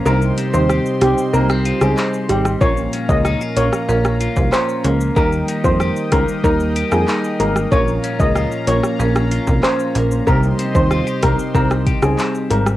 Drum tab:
HH |--x---x---x---x-|--x---x---x---x-|--x---x---x---x-|--x---x---x---x-|
SH |xxxxxxxxxxxxxxxx|xxxxxxxxxxxxxxxx|xxxxxxxxxxxxxxxx|xxxxxxxxxxxxxxxx|
CP |------------x---|------------x---|------------x---|------------x---|
SD |----r-r--r-r---r|----r--r-r--r---|----r-r----r---r|----r--r-r--r---|
BD |----------------|o--o-------o----|o--o--o-o-------|o--o-------o----|

HH |--x---x---x---x-|
SH |xxxxxxxxxxxxxxxx|
CP |------------x---|
SD |----r-r--r-r---r|
BD |o--o--o-o-o-----|